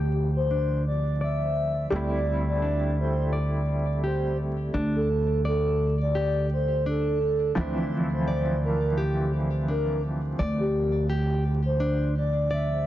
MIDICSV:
0, 0, Header, 1, 5, 480
1, 0, Start_track
1, 0, Key_signature, -1, "minor"
1, 0, Tempo, 705882
1, 1305, Time_signature, 4, 2, 24, 8
1, 8749, End_track
2, 0, Start_track
2, 0, Title_t, "Soft synth lead"
2, 0, Program_c, 0, 80
2, 0, Note_on_c, 0, 67, 91
2, 199, Note_off_c, 0, 67, 0
2, 245, Note_on_c, 0, 72, 93
2, 558, Note_off_c, 0, 72, 0
2, 597, Note_on_c, 0, 74, 86
2, 808, Note_off_c, 0, 74, 0
2, 839, Note_on_c, 0, 76, 85
2, 1267, Note_off_c, 0, 76, 0
2, 1320, Note_on_c, 0, 74, 100
2, 1641, Note_off_c, 0, 74, 0
2, 1690, Note_on_c, 0, 74, 92
2, 2000, Note_off_c, 0, 74, 0
2, 2041, Note_on_c, 0, 72, 80
2, 2250, Note_off_c, 0, 72, 0
2, 2765, Note_on_c, 0, 72, 83
2, 2972, Note_off_c, 0, 72, 0
2, 3367, Note_on_c, 0, 69, 86
2, 3679, Note_off_c, 0, 69, 0
2, 3723, Note_on_c, 0, 69, 91
2, 4042, Note_off_c, 0, 69, 0
2, 4086, Note_on_c, 0, 74, 94
2, 4398, Note_off_c, 0, 74, 0
2, 4442, Note_on_c, 0, 72, 84
2, 4651, Note_off_c, 0, 72, 0
2, 4684, Note_on_c, 0, 69, 89
2, 5109, Note_off_c, 0, 69, 0
2, 5159, Note_on_c, 0, 72, 98
2, 5480, Note_off_c, 0, 72, 0
2, 5529, Note_on_c, 0, 72, 94
2, 5840, Note_off_c, 0, 72, 0
2, 5878, Note_on_c, 0, 70, 79
2, 6089, Note_off_c, 0, 70, 0
2, 6592, Note_on_c, 0, 70, 79
2, 6806, Note_off_c, 0, 70, 0
2, 7202, Note_on_c, 0, 67, 91
2, 7516, Note_off_c, 0, 67, 0
2, 7560, Note_on_c, 0, 67, 91
2, 7881, Note_off_c, 0, 67, 0
2, 7928, Note_on_c, 0, 72, 96
2, 8239, Note_off_c, 0, 72, 0
2, 8282, Note_on_c, 0, 74, 84
2, 8491, Note_off_c, 0, 74, 0
2, 8519, Note_on_c, 0, 76, 92
2, 8749, Note_off_c, 0, 76, 0
2, 8749, End_track
3, 0, Start_track
3, 0, Title_t, "Nylon-string guitar"
3, 0, Program_c, 1, 24
3, 0, Note_on_c, 1, 67, 66
3, 93, Note_off_c, 1, 67, 0
3, 345, Note_on_c, 1, 62, 73
3, 574, Note_off_c, 1, 62, 0
3, 823, Note_on_c, 1, 74, 61
3, 1281, Note_off_c, 1, 74, 0
3, 1304, Note_on_c, 1, 67, 69
3, 1533, Note_off_c, 1, 67, 0
3, 1782, Note_on_c, 1, 62, 66
3, 2012, Note_off_c, 1, 62, 0
3, 2262, Note_on_c, 1, 74, 74
3, 2721, Note_off_c, 1, 74, 0
3, 2745, Note_on_c, 1, 67, 65
3, 2974, Note_off_c, 1, 67, 0
3, 3223, Note_on_c, 1, 62, 70
3, 3452, Note_off_c, 1, 62, 0
3, 3706, Note_on_c, 1, 74, 70
3, 4163, Note_off_c, 1, 74, 0
3, 4183, Note_on_c, 1, 67, 73
3, 4412, Note_off_c, 1, 67, 0
3, 4666, Note_on_c, 1, 62, 61
3, 4883, Note_off_c, 1, 62, 0
3, 5145, Note_on_c, 1, 62, 70
3, 5374, Note_off_c, 1, 62, 0
3, 5628, Note_on_c, 1, 74, 68
3, 6084, Note_off_c, 1, 74, 0
3, 6103, Note_on_c, 1, 67, 72
3, 6333, Note_off_c, 1, 67, 0
3, 6585, Note_on_c, 1, 62, 62
3, 6814, Note_off_c, 1, 62, 0
3, 7065, Note_on_c, 1, 74, 72
3, 7523, Note_off_c, 1, 74, 0
3, 7545, Note_on_c, 1, 67, 65
3, 7774, Note_off_c, 1, 67, 0
3, 8024, Note_on_c, 1, 62, 72
3, 8253, Note_off_c, 1, 62, 0
3, 8504, Note_on_c, 1, 74, 66
3, 8749, Note_off_c, 1, 74, 0
3, 8749, End_track
4, 0, Start_track
4, 0, Title_t, "Felt piano"
4, 0, Program_c, 2, 0
4, 0, Note_on_c, 2, 52, 61
4, 0, Note_on_c, 2, 53, 63
4, 0, Note_on_c, 2, 60, 63
4, 0, Note_on_c, 2, 64, 79
4, 1270, Note_off_c, 2, 53, 0
4, 1277, Note_off_c, 2, 52, 0
4, 1283, Note_off_c, 2, 60, 0
4, 1289, Note_off_c, 2, 64, 0
4, 1294, Note_on_c, 2, 55, 72
4, 1307, Note_on_c, 2, 57, 66
4, 1319, Note_on_c, 2, 60, 62
4, 1329, Note_on_c, 2, 64, 80
4, 5112, Note_off_c, 2, 55, 0
4, 5119, Note_off_c, 2, 57, 0
4, 5125, Note_off_c, 2, 60, 0
4, 5130, Note_off_c, 2, 64, 0
4, 5134, Note_on_c, 2, 53, 71
4, 5148, Note_on_c, 2, 52, 63
4, 5160, Note_on_c, 2, 60, 68
4, 5172, Note_on_c, 2, 64, 77
4, 8749, Note_off_c, 2, 52, 0
4, 8749, Note_off_c, 2, 53, 0
4, 8749, Note_off_c, 2, 60, 0
4, 8749, Note_off_c, 2, 64, 0
4, 8749, End_track
5, 0, Start_track
5, 0, Title_t, "Upright bass"
5, 0, Program_c, 3, 32
5, 0, Note_on_c, 3, 38, 70
5, 1284, Note_off_c, 3, 38, 0
5, 1306, Note_on_c, 3, 38, 73
5, 3203, Note_off_c, 3, 38, 0
5, 3223, Note_on_c, 3, 38, 72
5, 5122, Note_off_c, 3, 38, 0
5, 5147, Note_on_c, 3, 38, 73
5, 7044, Note_off_c, 3, 38, 0
5, 7068, Note_on_c, 3, 38, 73
5, 8749, Note_off_c, 3, 38, 0
5, 8749, End_track
0, 0, End_of_file